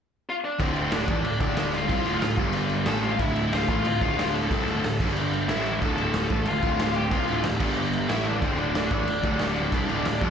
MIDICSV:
0, 0, Header, 1, 5, 480
1, 0, Start_track
1, 0, Key_signature, -1, "minor"
1, 0, Tempo, 326619
1, 861, Time_signature, 4, 2, 24, 8
1, 15137, End_track
2, 0, Start_track
2, 0, Title_t, "Lead electric guitar"
2, 0, Program_c, 0, 29
2, 431, Note_on_c, 0, 65, 76
2, 437, Note_on_c, 0, 77, 112
2, 504, Note_off_c, 0, 65, 0
2, 511, Note_off_c, 0, 77, 0
2, 650, Note_on_c, 0, 62, 72
2, 660, Note_on_c, 0, 74, 84
2, 861, Note_off_c, 0, 62, 0
2, 877, Note_on_c, 0, 60, 73
2, 892, Note_off_c, 0, 74, 0
2, 892, Note_on_c, 0, 72, 88
2, 1316, Note_off_c, 0, 60, 0
2, 1361, Note_on_c, 0, 62, 66
2, 1370, Note_off_c, 0, 72, 0
2, 1378, Note_on_c, 0, 74, 86
2, 1574, Note_off_c, 0, 62, 0
2, 1602, Note_on_c, 0, 62, 71
2, 1606, Note_off_c, 0, 74, 0
2, 1626, Note_on_c, 0, 74, 95
2, 2038, Note_off_c, 0, 62, 0
2, 2089, Note_off_c, 0, 74, 0
2, 2094, Note_on_c, 0, 62, 76
2, 2107, Note_on_c, 0, 74, 103
2, 2524, Note_off_c, 0, 62, 0
2, 2552, Note_on_c, 0, 65, 72
2, 2577, Note_off_c, 0, 74, 0
2, 2587, Note_on_c, 0, 77, 95
2, 3447, Note_off_c, 0, 65, 0
2, 3464, Note_off_c, 0, 77, 0
2, 4226, Note_on_c, 0, 69, 79
2, 4234, Note_on_c, 0, 81, 104
2, 4443, Note_on_c, 0, 65, 79
2, 4446, Note_off_c, 0, 69, 0
2, 4457, Note_on_c, 0, 77, 99
2, 4474, Note_off_c, 0, 81, 0
2, 4674, Note_off_c, 0, 65, 0
2, 4701, Note_on_c, 0, 64, 77
2, 4709, Note_off_c, 0, 77, 0
2, 4709, Note_on_c, 0, 76, 88
2, 5147, Note_off_c, 0, 64, 0
2, 5184, Note_off_c, 0, 76, 0
2, 5196, Note_on_c, 0, 65, 69
2, 5208, Note_on_c, 0, 77, 89
2, 5405, Note_off_c, 0, 65, 0
2, 5406, Note_off_c, 0, 77, 0
2, 5420, Note_on_c, 0, 65, 72
2, 5429, Note_on_c, 0, 77, 90
2, 5867, Note_off_c, 0, 65, 0
2, 5868, Note_off_c, 0, 77, 0
2, 5915, Note_on_c, 0, 65, 77
2, 5917, Note_on_c, 0, 77, 80
2, 6356, Note_off_c, 0, 65, 0
2, 6375, Note_on_c, 0, 69, 69
2, 6379, Note_on_c, 0, 81, 84
2, 6401, Note_off_c, 0, 77, 0
2, 7278, Note_off_c, 0, 81, 0
2, 7280, Note_off_c, 0, 69, 0
2, 8056, Note_on_c, 0, 76, 90
2, 8065, Note_on_c, 0, 64, 66
2, 8504, Note_off_c, 0, 76, 0
2, 8509, Note_off_c, 0, 64, 0
2, 8540, Note_on_c, 0, 69, 79
2, 8545, Note_on_c, 0, 81, 93
2, 8755, Note_off_c, 0, 81, 0
2, 8764, Note_off_c, 0, 69, 0
2, 8772, Note_on_c, 0, 81, 117
2, 8796, Note_on_c, 0, 69, 88
2, 9458, Note_off_c, 0, 69, 0
2, 9512, Note_on_c, 0, 65, 70
2, 9518, Note_off_c, 0, 81, 0
2, 9520, Note_on_c, 0, 77, 77
2, 9954, Note_off_c, 0, 65, 0
2, 9991, Note_off_c, 0, 77, 0
2, 10008, Note_on_c, 0, 77, 88
2, 10016, Note_on_c, 0, 65, 66
2, 10213, Note_off_c, 0, 65, 0
2, 10219, Note_on_c, 0, 67, 76
2, 10234, Note_on_c, 0, 79, 91
2, 10241, Note_off_c, 0, 77, 0
2, 10443, Note_off_c, 0, 67, 0
2, 10468, Note_on_c, 0, 65, 58
2, 10474, Note_off_c, 0, 79, 0
2, 10479, Note_on_c, 0, 77, 71
2, 10912, Note_off_c, 0, 65, 0
2, 10914, Note_off_c, 0, 77, 0
2, 11894, Note_on_c, 0, 64, 84
2, 11908, Note_on_c, 0, 76, 101
2, 12120, Note_off_c, 0, 64, 0
2, 12132, Note_on_c, 0, 62, 80
2, 12158, Note_off_c, 0, 76, 0
2, 12158, Note_on_c, 0, 74, 100
2, 12359, Note_off_c, 0, 62, 0
2, 12383, Note_on_c, 0, 60, 76
2, 12396, Note_off_c, 0, 74, 0
2, 12403, Note_on_c, 0, 72, 91
2, 12587, Note_on_c, 0, 62, 76
2, 12605, Note_off_c, 0, 60, 0
2, 12625, Note_on_c, 0, 74, 98
2, 12638, Note_off_c, 0, 72, 0
2, 12806, Note_off_c, 0, 62, 0
2, 12823, Note_on_c, 0, 62, 68
2, 12843, Note_off_c, 0, 74, 0
2, 12861, Note_on_c, 0, 74, 86
2, 15137, Note_off_c, 0, 62, 0
2, 15137, Note_off_c, 0, 74, 0
2, 15137, End_track
3, 0, Start_track
3, 0, Title_t, "Overdriven electric guitar"
3, 0, Program_c, 1, 29
3, 862, Note_on_c, 1, 38, 92
3, 873, Note_on_c, 1, 45, 99
3, 878, Note_on_c, 1, 50, 110
3, 1562, Note_off_c, 1, 45, 0
3, 1574, Note_off_c, 1, 38, 0
3, 1579, Note_on_c, 1, 45, 88
3, 1582, Note_off_c, 1, 50, 0
3, 1595, Note_on_c, 1, 52, 103
3, 1604, Note_on_c, 1, 57, 104
3, 1813, Note_off_c, 1, 45, 0
3, 1821, Note_off_c, 1, 52, 0
3, 1825, Note_off_c, 1, 57, 0
3, 1836, Note_on_c, 1, 38, 60
3, 1841, Note_on_c, 1, 45, 68
3, 2020, Note_off_c, 1, 38, 0
3, 2023, Note_off_c, 1, 45, 0
3, 2069, Note_on_c, 1, 38, 93
3, 2071, Note_on_c, 1, 45, 108
3, 2080, Note_on_c, 1, 50, 112
3, 2762, Note_off_c, 1, 38, 0
3, 2768, Note_on_c, 1, 48, 97
3, 2778, Note_off_c, 1, 45, 0
3, 2783, Note_off_c, 1, 50, 0
3, 2784, Note_on_c, 1, 55, 93
3, 2794, Note_on_c, 1, 60, 110
3, 3007, Note_off_c, 1, 48, 0
3, 3014, Note_off_c, 1, 55, 0
3, 3020, Note_off_c, 1, 60, 0
3, 3023, Note_on_c, 1, 38, 86
3, 3028, Note_on_c, 1, 45, 98
3, 3040, Note_on_c, 1, 50, 104
3, 3240, Note_off_c, 1, 38, 0
3, 3253, Note_off_c, 1, 45, 0
3, 3258, Note_on_c, 1, 38, 64
3, 3262, Note_off_c, 1, 50, 0
3, 3271, Note_on_c, 1, 45, 75
3, 3451, Note_off_c, 1, 38, 0
3, 3457, Note_off_c, 1, 45, 0
3, 3491, Note_on_c, 1, 43, 87
3, 3504, Note_on_c, 1, 50, 101
3, 3518, Note_on_c, 1, 55, 97
3, 4206, Note_off_c, 1, 43, 0
3, 4212, Note_on_c, 1, 45, 102
3, 4215, Note_off_c, 1, 50, 0
3, 4221, Note_off_c, 1, 55, 0
3, 4225, Note_on_c, 1, 52, 108
3, 4234, Note_on_c, 1, 57, 113
3, 4688, Note_off_c, 1, 45, 0
3, 4694, Note_on_c, 1, 38, 99
3, 4695, Note_off_c, 1, 52, 0
3, 4699, Note_off_c, 1, 57, 0
3, 4707, Note_on_c, 1, 45, 105
3, 4712, Note_on_c, 1, 50, 100
3, 5405, Note_off_c, 1, 45, 0
3, 5409, Note_off_c, 1, 38, 0
3, 5418, Note_off_c, 1, 50, 0
3, 5423, Note_on_c, 1, 45, 86
3, 5429, Note_on_c, 1, 52, 99
3, 5436, Note_on_c, 1, 57, 112
3, 5654, Note_off_c, 1, 45, 0
3, 5657, Note_off_c, 1, 52, 0
3, 5660, Note_off_c, 1, 57, 0
3, 5663, Note_on_c, 1, 38, 61
3, 5676, Note_on_c, 1, 45, 66
3, 5853, Note_off_c, 1, 38, 0
3, 5859, Note_off_c, 1, 45, 0
3, 5910, Note_on_c, 1, 38, 97
3, 5925, Note_on_c, 1, 45, 109
3, 5933, Note_on_c, 1, 50, 96
3, 6617, Note_off_c, 1, 38, 0
3, 6625, Note_off_c, 1, 45, 0
3, 6627, Note_on_c, 1, 48, 93
3, 6629, Note_off_c, 1, 50, 0
3, 6647, Note_on_c, 1, 55, 96
3, 6647, Note_on_c, 1, 60, 112
3, 6856, Note_off_c, 1, 48, 0
3, 6866, Note_off_c, 1, 55, 0
3, 6866, Note_off_c, 1, 60, 0
3, 6881, Note_on_c, 1, 38, 101
3, 6886, Note_on_c, 1, 45, 101
3, 6888, Note_on_c, 1, 50, 104
3, 7103, Note_off_c, 1, 38, 0
3, 7105, Note_off_c, 1, 45, 0
3, 7107, Note_off_c, 1, 50, 0
3, 7122, Note_on_c, 1, 38, 65
3, 7126, Note_on_c, 1, 45, 77
3, 7303, Note_off_c, 1, 38, 0
3, 7305, Note_off_c, 1, 45, 0
3, 7355, Note_on_c, 1, 43, 88
3, 7364, Note_on_c, 1, 50, 95
3, 7374, Note_on_c, 1, 55, 109
3, 8060, Note_off_c, 1, 43, 0
3, 8065, Note_off_c, 1, 50, 0
3, 8070, Note_off_c, 1, 55, 0
3, 8073, Note_on_c, 1, 45, 95
3, 8089, Note_on_c, 1, 52, 101
3, 8089, Note_on_c, 1, 57, 111
3, 8532, Note_off_c, 1, 45, 0
3, 8544, Note_off_c, 1, 52, 0
3, 8546, Note_on_c, 1, 38, 92
3, 8547, Note_off_c, 1, 57, 0
3, 8550, Note_on_c, 1, 45, 93
3, 8560, Note_on_c, 1, 50, 104
3, 9253, Note_off_c, 1, 45, 0
3, 9256, Note_off_c, 1, 38, 0
3, 9263, Note_off_c, 1, 50, 0
3, 9271, Note_on_c, 1, 45, 88
3, 9276, Note_on_c, 1, 52, 99
3, 9278, Note_on_c, 1, 57, 104
3, 9498, Note_off_c, 1, 45, 0
3, 9501, Note_off_c, 1, 52, 0
3, 9502, Note_off_c, 1, 57, 0
3, 9516, Note_on_c, 1, 45, 66
3, 9518, Note_on_c, 1, 38, 63
3, 9700, Note_off_c, 1, 45, 0
3, 9701, Note_off_c, 1, 38, 0
3, 9746, Note_on_c, 1, 38, 90
3, 9752, Note_on_c, 1, 45, 101
3, 9759, Note_on_c, 1, 50, 104
3, 10437, Note_off_c, 1, 38, 0
3, 10443, Note_on_c, 1, 48, 91
3, 10455, Note_off_c, 1, 45, 0
3, 10460, Note_off_c, 1, 50, 0
3, 10461, Note_on_c, 1, 55, 101
3, 10466, Note_on_c, 1, 60, 106
3, 10684, Note_off_c, 1, 48, 0
3, 10689, Note_off_c, 1, 55, 0
3, 10692, Note_on_c, 1, 38, 88
3, 10695, Note_on_c, 1, 45, 90
3, 10696, Note_off_c, 1, 60, 0
3, 10709, Note_on_c, 1, 50, 99
3, 10919, Note_off_c, 1, 38, 0
3, 10930, Note_off_c, 1, 45, 0
3, 10936, Note_on_c, 1, 38, 74
3, 10938, Note_off_c, 1, 50, 0
3, 10950, Note_on_c, 1, 45, 82
3, 11130, Note_off_c, 1, 38, 0
3, 11137, Note_off_c, 1, 45, 0
3, 11165, Note_on_c, 1, 43, 89
3, 11171, Note_on_c, 1, 50, 90
3, 11177, Note_on_c, 1, 55, 99
3, 11876, Note_off_c, 1, 43, 0
3, 11879, Note_off_c, 1, 50, 0
3, 11881, Note_on_c, 1, 45, 98
3, 11885, Note_on_c, 1, 52, 109
3, 11891, Note_off_c, 1, 55, 0
3, 11897, Note_on_c, 1, 57, 115
3, 12363, Note_off_c, 1, 45, 0
3, 12365, Note_off_c, 1, 52, 0
3, 12369, Note_on_c, 1, 38, 98
3, 12371, Note_off_c, 1, 57, 0
3, 12386, Note_on_c, 1, 45, 94
3, 12394, Note_on_c, 1, 50, 104
3, 13070, Note_off_c, 1, 45, 0
3, 13082, Note_off_c, 1, 38, 0
3, 13088, Note_on_c, 1, 45, 87
3, 13100, Note_off_c, 1, 50, 0
3, 13102, Note_on_c, 1, 52, 91
3, 13110, Note_on_c, 1, 57, 105
3, 13327, Note_off_c, 1, 45, 0
3, 13334, Note_off_c, 1, 52, 0
3, 13338, Note_off_c, 1, 57, 0
3, 13351, Note_on_c, 1, 38, 66
3, 13358, Note_on_c, 1, 45, 73
3, 13538, Note_off_c, 1, 38, 0
3, 13541, Note_off_c, 1, 45, 0
3, 13574, Note_on_c, 1, 38, 101
3, 13582, Note_on_c, 1, 45, 95
3, 13597, Note_on_c, 1, 50, 103
3, 14280, Note_off_c, 1, 38, 0
3, 14286, Note_on_c, 1, 48, 94
3, 14292, Note_off_c, 1, 45, 0
3, 14298, Note_on_c, 1, 55, 91
3, 14302, Note_off_c, 1, 50, 0
3, 14313, Note_on_c, 1, 60, 105
3, 14513, Note_off_c, 1, 48, 0
3, 14519, Note_on_c, 1, 38, 87
3, 14524, Note_off_c, 1, 55, 0
3, 14530, Note_on_c, 1, 45, 91
3, 14534, Note_off_c, 1, 60, 0
3, 14540, Note_on_c, 1, 50, 97
3, 14763, Note_off_c, 1, 38, 0
3, 14768, Note_off_c, 1, 45, 0
3, 14773, Note_off_c, 1, 50, 0
3, 14779, Note_on_c, 1, 38, 63
3, 14789, Note_on_c, 1, 45, 71
3, 14972, Note_off_c, 1, 38, 0
3, 14977, Note_off_c, 1, 45, 0
3, 15000, Note_on_c, 1, 41, 98
3, 15013, Note_on_c, 1, 48, 94
3, 15028, Note_on_c, 1, 53, 105
3, 15137, Note_off_c, 1, 41, 0
3, 15137, Note_off_c, 1, 48, 0
3, 15137, Note_off_c, 1, 53, 0
3, 15137, End_track
4, 0, Start_track
4, 0, Title_t, "Picked electric bass"
4, 0, Program_c, 2, 34
4, 883, Note_on_c, 2, 26, 89
4, 1542, Note_off_c, 2, 26, 0
4, 1591, Note_on_c, 2, 33, 98
4, 1809, Note_off_c, 2, 33, 0
4, 1820, Note_on_c, 2, 26, 75
4, 2043, Note_off_c, 2, 26, 0
4, 2057, Note_on_c, 2, 26, 98
4, 2728, Note_off_c, 2, 26, 0
4, 2772, Note_on_c, 2, 36, 91
4, 2999, Note_off_c, 2, 36, 0
4, 3012, Note_on_c, 2, 26, 92
4, 3238, Note_off_c, 2, 26, 0
4, 3256, Note_on_c, 2, 26, 75
4, 3476, Note_off_c, 2, 26, 0
4, 3485, Note_on_c, 2, 31, 98
4, 4161, Note_off_c, 2, 31, 0
4, 4199, Note_on_c, 2, 33, 94
4, 4655, Note_off_c, 2, 33, 0
4, 4681, Note_on_c, 2, 26, 91
4, 5359, Note_off_c, 2, 26, 0
4, 5412, Note_on_c, 2, 33, 100
4, 5639, Note_off_c, 2, 33, 0
4, 5649, Note_on_c, 2, 26, 79
4, 5877, Note_off_c, 2, 26, 0
4, 5893, Note_on_c, 2, 26, 98
4, 6566, Note_off_c, 2, 26, 0
4, 6620, Note_on_c, 2, 36, 99
4, 6837, Note_off_c, 2, 36, 0
4, 6846, Note_on_c, 2, 26, 95
4, 7069, Note_off_c, 2, 26, 0
4, 7078, Note_on_c, 2, 26, 75
4, 7311, Note_off_c, 2, 26, 0
4, 7345, Note_on_c, 2, 31, 96
4, 8012, Note_off_c, 2, 31, 0
4, 8055, Note_on_c, 2, 33, 92
4, 8504, Note_off_c, 2, 33, 0
4, 8540, Note_on_c, 2, 26, 92
4, 9209, Note_off_c, 2, 26, 0
4, 9267, Note_on_c, 2, 33, 98
4, 9487, Note_off_c, 2, 33, 0
4, 9500, Note_on_c, 2, 26, 79
4, 9723, Note_off_c, 2, 26, 0
4, 9738, Note_on_c, 2, 26, 94
4, 10409, Note_off_c, 2, 26, 0
4, 10458, Note_on_c, 2, 36, 94
4, 10682, Note_off_c, 2, 36, 0
4, 10697, Note_on_c, 2, 26, 91
4, 10921, Note_off_c, 2, 26, 0
4, 10942, Note_on_c, 2, 26, 81
4, 11164, Note_off_c, 2, 26, 0
4, 11176, Note_on_c, 2, 31, 101
4, 11847, Note_off_c, 2, 31, 0
4, 11893, Note_on_c, 2, 33, 100
4, 12343, Note_off_c, 2, 33, 0
4, 12369, Note_on_c, 2, 26, 93
4, 13044, Note_off_c, 2, 26, 0
4, 13096, Note_on_c, 2, 33, 103
4, 13318, Note_off_c, 2, 33, 0
4, 13327, Note_on_c, 2, 26, 80
4, 13552, Note_off_c, 2, 26, 0
4, 13560, Note_on_c, 2, 26, 93
4, 14240, Note_off_c, 2, 26, 0
4, 14288, Note_on_c, 2, 36, 94
4, 14517, Note_off_c, 2, 36, 0
4, 14544, Note_on_c, 2, 26, 95
4, 14766, Note_off_c, 2, 26, 0
4, 14777, Note_on_c, 2, 26, 76
4, 15002, Note_off_c, 2, 26, 0
4, 15012, Note_on_c, 2, 29, 97
4, 15137, Note_off_c, 2, 29, 0
4, 15137, End_track
5, 0, Start_track
5, 0, Title_t, "Drums"
5, 876, Note_on_c, 9, 36, 108
5, 879, Note_on_c, 9, 49, 84
5, 1023, Note_off_c, 9, 36, 0
5, 1026, Note_off_c, 9, 49, 0
5, 1116, Note_on_c, 9, 49, 63
5, 1263, Note_off_c, 9, 49, 0
5, 1345, Note_on_c, 9, 49, 87
5, 1354, Note_on_c, 9, 38, 113
5, 1492, Note_off_c, 9, 49, 0
5, 1501, Note_off_c, 9, 38, 0
5, 1587, Note_on_c, 9, 36, 114
5, 1589, Note_on_c, 9, 49, 65
5, 1734, Note_off_c, 9, 36, 0
5, 1736, Note_off_c, 9, 49, 0
5, 1828, Note_on_c, 9, 49, 85
5, 1975, Note_off_c, 9, 49, 0
5, 2063, Note_on_c, 9, 49, 61
5, 2065, Note_on_c, 9, 36, 108
5, 2210, Note_off_c, 9, 49, 0
5, 2212, Note_off_c, 9, 36, 0
5, 2299, Note_on_c, 9, 49, 85
5, 2308, Note_on_c, 9, 38, 112
5, 2446, Note_off_c, 9, 49, 0
5, 2455, Note_off_c, 9, 38, 0
5, 2554, Note_on_c, 9, 49, 66
5, 2701, Note_off_c, 9, 49, 0
5, 2783, Note_on_c, 9, 36, 104
5, 2784, Note_on_c, 9, 49, 83
5, 2930, Note_off_c, 9, 36, 0
5, 2931, Note_off_c, 9, 49, 0
5, 3015, Note_on_c, 9, 49, 65
5, 3162, Note_off_c, 9, 49, 0
5, 3256, Note_on_c, 9, 49, 76
5, 3265, Note_on_c, 9, 38, 111
5, 3403, Note_off_c, 9, 49, 0
5, 3412, Note_off_c, 9, 38, 0
5, 3489, Note_on_c, 9, 49, 63
5, 3491, Note_on_c, 9, 36, 111
5, 3636, Note_off_c, 9, 49, 0
5, 3638, Note_off_c, 9, 36, 0
5, 3716, Note_on_c, 9, 49, 84
5, 3863, Note_off_c, 9, 49, 0
5, 3960, Note_on_c, 9, 49, 60
5, 4107, Note_off_c, 9, 49, 0
5, 4195, Note_on_c, 9, 49, 77
5, 4204, Note_on_c, 9, 38, 114
5, 4342, Note_off_c, 9, 49, 0
5, 4351, Note_off_c, 9, 38, 0
5, 4463, Note_on_c, 9, 49, 60
5, 4610, Note_off_c, 9, 49, 0
5, 4690, Note_on_c, 9, 49, 79
5, 4694, Note_on_c, 9, 36, 106
5, 4837, Note_off_c, 9, 49, 0
5, 4841, Note_off_c, 9, 36, 0
5, 4935, Note_on_c, 9, 49, 59
5, 5082, Note_off_c, 9, 49, 0
5, 5181, Note_on_c, 9, 49, 83
5, 5190, Note_on_c, 9, 38, 115
5, 5328, Note_off_c, 9, 49, 0
5, 5337, Note_off_c, 9, 38, 0
5, 5417, Note_on_c, 9, 36, 110
5, 5424, Note_on_c, 9, 49, 65
5, 5564, Note_off_c, 9, 36, 0
5, 5571, Note_off_c, 9, 49, 0
5, 5653, Note_on_c, 9, 49, 84
5, 5800, Note_off_c, 9, 49, 0
5, 5899, Note_on_c, 9, 36, 107
5, 5904, Note_on_c, 9, 49, 61
5, 6046, Note_off_c, 9, 36, 0
5, 6051, Note_off_c, 9, 49, 0
5, 6154, Note_on_c, 9, 49, 84
5, 6162, Note_on_c, 9, 38, 109
5, 6300, Note_off_c, 9, 49, 0
5, 6309, Note_off_c, 9, 38, 0
5, 6397, Note_on_c, 9, 49, 62
5, 6544, Note_off_c, 9, 49, 0
5, 6626, Note_on_c, 9, 36, 104
5, 6633, Note_on_c, 9, 49, 89
5, 6773, Note_off_c, 9, 36, 0
5, 6780, Note_off_c, 9, 49, 0
5, 6873, Note_on_c, 9, 49, 65
5, 7020, Note_off_c, 9, 49, 0
5, 7111, Note_on_c, 9, 49, 79
5, 7119, Note_on_c, 9, 38, 109
5, 7258, Note_off_c, 9, 49, 0
5, 7266, Note_off_c, 9, 38, 0
5, 7348, Note_on_c, 9, 36, 112
5, 7352, Note_on_c, 9, 49, 107
5, 7495, Note_off_c, 9, 36, 0
5, 7499, Note_off_c, 9, 49, 0
5, 7590, Note_on_c, 9, 49, 83
5, 7737, Note_off_c, 9, 49, 0
5, 7838, Note_on_c, 9, 49, 58
5, 7985, Note_off_c, 9, 49, 0
5, 8062, Note_on_c, 9, 49, 80
5, 8071, Note_on_c, 9, 38, 106
5, 8209, Note_off_c, 9, 49, 0
5, 8218, Note_off_c, 9, 38, 0
5, 8321, Note_on_c, 9, 49, 57
5, 8468, Note_off_c, 9, 49, 0
5, 8553, Note_on_c, 9, 36, 105
5, 8558, Note_on_c, 9, 49, 81
5, 8700, Note_off_c, 9, 36, 0
5, 8705, Note_off_c, 9, 49, 0
5, 8787, Note_on_c, 9, 49, 60
5, 8934, Note_off_c, 9, 49, 0
5, 9016, Note_on_c, 9, 49, 81
5, 9025, Note_on_c, 9, 38, 113
5, 9163, Note_off_c, 9, 49, 0
5, 9172, Note_off_c, 9, 38, 0
5, 9252, Note_on_c, 9, 49, 63
5, 9263, Note_on_c, 9, 36, 109
5, 9399, Note_off_c, 9, 49, 0
5, 9410, Note_off_c, 9, 36, 0
5, 9486, Note_on_c, 9, 49, 84
5, 9633, Note_off_c, 9, 49, 0
5, 9734, Note_on_c, 9, 49, 62
5, 9742, Note_on_c, 9, 36, 105
5, 9881, Note_off_c, 9, 49, 0
5, 9889, Note_off_c, 9, 36, 0
5, 9982, Note_on_c, 9, 49, 79
5, 9991, Note_on_c, 9, 38, 115
5, 10129, Note_off_c, 9, 49, 0
5, 10137, Note_off_c, 9, 38, 0
5, 10209, Note_on_c, 9, 49, 64
5, 10356, Note_off_c, 9, 49, 0
5, 10451, Note_on_c, 9, 49, 91
5, 10456, Note_on_c, 9, 36, 106
5, 10598, Note_off_c, 9, 49, 0
5, 10603, Note_off_c, 9, 36, 0
5, 10693, Note_on_c, 9, 49, 68
5, 10840, Note_off_c, 9, 49, 0
5, 10922, Note_on_c, 9, 49, 87
5, 10931, Note_on_c, 9, 38, 117
5, 11069, Note_off_c, 9, 49, 0
5, 11078, Note_off_c, 9, 38, 0
5, 11169, Note_on_c, 9, 49, 103
5, 11173, Note_on_c, 9, 36, 113
5, 11316, Note_off_c, 9, 49, 0
5, 11320, Note_off_c, 9, 36, 0
5, 11412, Note_on_c, 9, 49, 84
5, 11559, Note_off_c, 9, 49, 0
5, 11657, Note_on_c, 9, 49, 63
5, 11804, Note_off_c, 9, 49, 0
5, 11891, Note_on_c, 9, 49, 82
5, 11900, Note_on_c, 9, 38, 110
5, 12038, Note_off_c, 9, 49, 0
5, 12047, Note_off_c, 9, 38, 0
5, 12122, Note_on_c, 9, 49, 60
5, 12269, Note_off_c, 9, 49, 0
5, 12372, Note_on_c, 9, 49, 78
5, 12374, Note_on_c, 9, 36, 109
5, 12519, Note_off_c, 9, 49, 0
5, 12521, Note_off_c, 9, 36, 0
5, 12610, Note_on_c, 9, 49, 62
5, 12757, Note_off_c, 9, 49, 0
5, 12856, Note_on_c, 9, 49, 79
5, 12865, Note_on_c, 9, 38, 113
5, 13003, Note_off_c, 9, 49, 0
5, 13012, Note_off_c, 9, 38, 0
5, 13094, Note_on_c, 9, 36, 115
5, 13097, Note_on_c, 9, 49, 61
5, 13241, Note_off_c, 9, 36, 0
5, 13243, Note_off_c, 9, 49, 0
5, 13337, Note_on_c, 9, 49, 84
5, 13484, Note_off_c, 9, 49, 0
5, 13573, Note_on_c, 9, 36, 107
5, 13578, Note_on_c, 9, 49, 61
5, 13720, Note_off_c, 9, 36, 0
5, 13725, Note_off_c, 9, 49, 0
5, 13800, Note_on_c, 9, 49, 84
5, 13809, Note_on_c, 9, 38, 103
5, 13947, Note_off_c, 9, 49, 0
5, 13956, Note_off_c, 9, 38, 0
5, 14051, Note_on_c, 9, 49, 66
5, 14198, Note_off_c, 9, 49, 0
5, 14286, Note_on_c, 9, 49, 85
5, 14289, Note_on_c, 9, 36, 106
5, 14433, Note_off_c, 9, 49, 0
5, 14436, Note_off_c, 9, 36, 0
5, 14537, Note_on_c, 9, 49, 66
5, 14684, Note_off_c, 9, 49, 0
5, 14774, Note_on_c, 9, 49, 85
5, 14783, Note_on_c, 9, 38, 111
5, 14921, Note_off_c, 9, 49, 0
5, 14930, Note_off_c, 9, 38, 0
5, 15008, Note_on_c, 9, 49, 64
5, 15011, Note_on_c, 9, 36, 106
5, 15137, Note_off_c, 9, 36, 0
5, 15137, Note_off_c, 9, 49, 0
5, 15137, End_track
0, 0, End_of_file